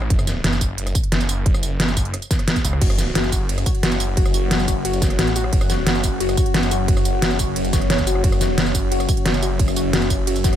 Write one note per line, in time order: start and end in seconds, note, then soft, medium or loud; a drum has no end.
0.02 cross-stick medium
0.10 0.43 F#1 loud
0.10 kick loud
0.10 closed hi-hat loud
0.19 cross-stick medium
0.19 tambourine soft
0.27 snare soft
0.27 closed hi-hat medium
0.27 tambourine medium
0.44 0.94 F#1 loud
0.44 snare loud
0.44 closed hi-hat loud
0.53 tambourine soft
0.61 kick medium
0.61 closed hi-hat medium
0.61 tambourine medium
0.78 closed hi-hat loud
0.87 cross-stick soft
0.87 closed hi-hat soft
0.87 tambourine soft
0.95 kick loud
0.95 closed hi-hat medium
0.95 tambourine medium
1.04 closed hi-hat soft
1.12 1.62 F#1 loud
1.12 snare loud
1.12 closed hi-hat medium
1.21 closed hi-hat soft
1.21 tambourine soft
1.29 closed hi-hat medium
1.29 tambourine medium
1.46 kick loud
1.46 closed hi-hat loud
1.54 cross-stick medium
1.54 tambourine soft
1.63 2.12 F#1 medium
1.63 closed hi-hat medium
1.63 tambourine medium
1.80 snare loud
1.80 closed hi-hat loud
1.88 tambourine soft
1.97 kick medium
1.97 closed hi-hat medium
1.97 tambourine medium
2.05 closed hi-hat soft
2.14 cross-stick medium
2.14 closed hi-hat loud
2.22 closed hi-hat soft
2.22 tambourine soft
2.31 kick loud
2.31 snare soft
2.31 closed hi-hat medium
2.31 tambourine medium
2.39 cross-stick soft
2.39 closed hi-hat soft
2.48 snare loud
2.48 closed hi-hat loud
2.56 kick medium
2.56 closed hi-hat soft
2.56 tambourine soft
2.65 2.80 C#2 loud
2.65 closed hi-hat medium
2.65 tambourine medium
2.73 cross-stick medium
2.81 3.14 F#1 loud
2.81 10.56 F#3 medium
2.81 10.56 C#4 medium
2.81 2.90 F#4 medium
2.81 10.56 C#5 medium
2.81 8.22 F#5 medium
2.81 kick loud
2.81 closed hi-hat loud
2.81 crash medium
2.81 ride medium
2.90 cross-stick medium
2.90 tambourine soft
2.98 snare soft
2.98 closed hi-hat medium
2.98 ride soft
2.98 tambourine medium
3.15 3.65 F#1 medium
3.15 3.24 F#4 medium
3.15 snare loud
3.15 closed hi-hat loud
3.15 ride medium
3.24 tambourine soft
3.32 3.41 F#4 medium
3.32 kick medium
3.32 closed hi-hat medium
3.32 ride medium
3.32 tambourine medium
3.49 closed hi-hat loud
3.49 ride medium
3.58 cross-stick soft
3.58 closed hi-hat soft
3.58 tambourine soft
3.66 3.75 F#4 medium
3.66 kick loud
3.66 closed hi-hat medium
3.66 ride medium
3.66 tambourine medium
3.75 closed hi-hat soft
3.83 4.33 F#1 loud
3.83 3.92 F#4 medium
3.83 snare loud
3.83 closed hi-hat loud
3.83 ride medium
3.92 closed hi-hat soft
3.92 tambourine soft
4.00 closed hi-hat medium
4.00 ride medium
4.00 tambourine medium
4.17 4.26 F#4 medium
4.17 kick loud
4.17 closed hi-hat loud
4.17 ride medium
4.26 cross-stick medium
4.26 tambourine soft
4.34 4.84 F#1 loud
4.34 4.43 F#4 medium
4.34 closed hi-hat medium
4.34 ride soft
4.34 tambourine medium
4.51 snare loud
4.51 closed hi-hat medium
4.51 ride medium
4.59 tambourine soft
4.68 4.77 F#4 medium
4.68 kick medium
4.68 closed hi-hat medium
4.68 ride medium
4.68 tambourine medium
4.85 5.17 F#1 loud
4.85 4.94 F#4 medium
4.85 closed hi-hat loud
4.85 ride medium
4.93 closed hi-hat soft
4.93 tambourine soft
5.02 kick loud
5.02 snare soft
5.02 closed hi-hat medium
5.02 ride soft
5.02 tambourine medium
5.10 cross-stick soft
5.10 closed hi-hat soft
5.19 5.51 A1 loud
5.19 5.28 F#4 medium
5.19 snare loud
5.19 closed hi-hat medium
5.19 ride medium
5.27 closed hi-hat soft
5.27 tambourine soft
5.36 5.45 F#4 medium
5.36 closed hi-hat medium
5.36 ride medium
5.36 tambourine medium
5.44 cross-stick medium
5.53 5.85 F#1 loud
5.53 kick loud
5.53 closed hi-hat medium
5.53 ride medium
5.61 cross-stick medium
5.61 tambourine soft
5.70 5.79 F#4 medium
5.70 snare soft
5.70 closed hi-hat medium
5.70 ride medium
5.70 tambourine medium
5.87 6.36 F#1 loud
5.87 5.95 F#4 medium
5.87 snare loud
5.87 closed hi-hat medium
5.87 ride medium
5.95 tambourine soft
6.04 kick medium
6.04 closed hi-hat medium
6.04 ride medium
6.04 tambourine medium
6.20 6.29 F#4 medium
6.20 closed hi-hat medium
6.20 ride medium
6.29 cross-stick medium
6.29 closed hi-hat soft
6.29 tambourine soft
6.37 6.46 F#4 medium
6.37 kick loud
6.37 closed hi-hat medium
6.37 ride medium
6.37 tambourine medium
6.46 closed hi-hat soft
6.54 7.04 F#1 loud
6.54 snare loud
6.54 closed hi-hat medium
6.54 ride medium
6.63 closed hi-hat soft
6.63 tambourine soft
6.71 6.80 F#4 medium
6.71 closed hi-hat medium
6.71 ride medium
6.71 tambourine medium
6.88 6.97 F#4 medium
6.88 kick loud
6.88 closed hi-hat medium
6.88 ride medium
6.97 cross-stick medium
6.97 tambourine soft
7.05 7.55 F#1 loud
7.05 closed hi-hat medium
7.05 ride soft
7.05 tambourine medium
7.22 7.31 F#4 medium
7.22 snare loud
7.22 closed hi-hat medium
7.22 ride medium
7.31 tambourine soft
7.39 7.48 F#4 medium
7.39 kick medium
7.39 closed hi-hat medium
7.39 ride medium
7.39 tambourine medium
7.56 7.72 F#1 loud
7.56 closed hi-hat medium
7.56 ride medium
7.65 closed hi-hat soft
7.65 tambourine soft
7.73 8.23 F#1 loud
7.73 7.86 C#5 medium
7.73 kick loud
7.73 snare soft
7.73 closed hi-hat medium
7.73 ride medium
7.73 tambourine medium
7.82 cross-stick soft
7.82 closed hi-hat soft
7.90 8.03 C#5 loud
7.90 snare loud
7.90 closed hi-hat medium
7.90 ride medium
7.98 kick medium
7.98 closed hi-hat soft
7.98 tambourine soft
8.07 8.16 F#4 loud
8.07 closed hi-hat medium
8.07 ride medium
8.07 tambourine medium
8.15 cross-stick medium
8.24 8.56 F#1 loud
8.24 8.33 F#4 medium
8.24 10.56 E5 medium
8.24 kick loud
8.24 closed hi-hat loud
8.24 ride medium
8.32 cross-stick medium
8.32 tambourine soft
8.41 8.50 F#4 medium
8.41 snare soft
8.41 closed hi-hat medium
8.41 ride medium
8.41 tambourine medium
8.58 9.07 F#1 loud
8.58 snare loud
8.58 closed hi-hat medium
8.58 ride medium
8.66 tambourine soft
8.75 8.84 F#4 medium
8.75 kick medium
8.75 closed hi-hat medium
8.75 ride medium
8.75 tambourine medium
8.92 9.01 F#4 medium
8.92 closed hi-hat medium
8.92 ride medium
9.00 cross-stick soft
9.00 closed hi-hat soft
9.00 tambourine soft
9.09 kick loud
9.09 closed hi-hat medium
9.09 ride medium
9.09 tambourine medium
9.17 closed hi-hat soft
9.26 9.75 F#1 loud
9.26 9.34 F#4 medium
9.26 snare loud
9.26 closed hi-hat medium
9.26 ride medium
9.34 closed hi-hat soft
9.34 tambourine soft
9.43 9.51 F#4 medium
9.43 closed hi-hat medium
9.43 ride medium
9.43 tambourine medium
9.59 kick loud
9.59 closed hi-hat loud
9.59 ride medium
9.68 cross-stick medium
9.68 tambourine soft
9.76 10.26 F#1 medium
9.76 9.85 F#4 medium
9.76 closed hi-hat medium
9.76 ride medium
9.76 tambourine medium
9.93 10.02 F#4 medium
9.93 snare loud
9.93 closed hi-hat loud
9.93 ride medium
10.02 tambourine soft
10.10 kick medium
10.10 closed hi-hat medium
10.10 ride medium
10.10 tambourine medium
10.27 10.56 F#1 loud
10.27 10.36 F#4 medium
10.27 closed hi-hat loud
10.27 ride medium
10.36 closed hi-hat soft
10.36 tambourine soft
10.44 10.53 F#4 medium
10.44 kick loud
10.44 snare soft
10.44 closed hi-hat medium
10.44 ride medium
10.44 tambourine medium
10.53 cross-stick soft
10.53 closed hi-hat soft